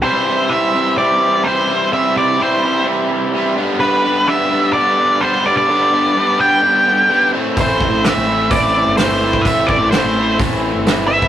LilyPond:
<<
  \new Staff \with { instrumentName = "Lead electric guitar" } { \time 4/4 \key c \major \tempo 4 = 127 c''4 e''4 d''4 c''4 | e''8 d''8 c''4 r2 | b'4 e''4 d''4 c''8 d''16 d''16~ | d''4. g''2 r8 |
c''4 e''4 d''4 c''4 | e''8 d''8 c''4 r4. e''8 | }
  \new Staff \with { instrumentName = "Overdriven electric guitar" } { \time 4/4 \key c \major <c e g e' g'>8 <g e' g'>8 <e g e' g'>8 <g e' g'>8 <c e g e' g'>8 <g e' g'>8 <e g e' g'>4 | <c e g e' g'>8 <g e' g'>8 <e g e' g'>8 <g e' g'>8 <c e g e' g'>8 <g e' g'>8 <e g e' g'>8 <g, d g b d' g'>8 | <g, d g b d' g'>8 <g b d' g'>8 <g b d' g'>8 <g b d' g'>8 <g, d g b d' g'>8 <g b d' g'>8 <g b d' g'>4 | <g, d g b d' g'>8 <g b d' g'>8 <g b d' g'>8 <g b d' g'>8 <g, d g b d' g'>8 <g b d' g'>8 <g b d' g'>8 <a, e a c' e'>8 |
<a, e a c' e'>8 <a c' e'>8 <e a c' e'>8 <a c' e'>8 <a, e a c' e'>8 <a c' e'>8 <e a c' e'>4 | <a, e a c' e'>8 <a c' e'>8 <e a c' e'>8 <a c' e'>8 <a, e a c' e'>8 <a c' e'>8 <e a c' e'>4 | }
  \new Staff \with { instrumentName = "Overdriven electric guitar" } { \time 4/4 \key c \major <c g c' e'>8 <g c' e'>8 <c g c' e'>8 <g c' e'>4. <c g c' e'>8 <g c' e'>8 | <c g c' e'>8 <g c' e'>8 <c g c' e'>8 <g c' e'>4. <c g c' e'>8 <g, d g b d'>8 | <g, d g b d'>8 <g b d'>8 <g, d g b d'>8 <g b d'>4. <d g b d'>8 <g b d'>8 | <g, d g b d'>8 <g b d'>8 <g, d g b d'>8 <g b d'>4. <d g b d'>8 <a, e a c' e'>8 |
<a, e a c' e'>8 <a c' e'>8 <a, e a c' e'>8 <a c' e'>4. <e a c' e'>8 <a c' e'>8 | <a, e a c' e'>8 <a c' e'>8 <a, e a c' e'>8 <a c' e'>4. <e a c' e'>8 <a c' e'>8 | }
  \new Staff \with { instrumentName = "Fingered electric bass" } { \clef bass \time 4/4 \key c \major r1 | r1 | r1 | r1 |
a,,8. a,,8 a,,4. g,,4~ g,,16 | a,,8. a,,8 a,,4. g,,4~ g,,16 | }
  \new DrumStaff \with { instrumentName = "Drums" } \drummode { \time 4/4 r4 r4 r4 r4 | r4 r4 r4 r4 | r4 r4 r4 r4 | r4 r4 r4 r4 |
<hho bd>8 bd8 <hho sn>4 <hho bd>4 <hho sn>8. bd16 | <hho bd>8 bd8 <hho sn>4 <hho bd>4 <hho sn>8. bd16 | }
>>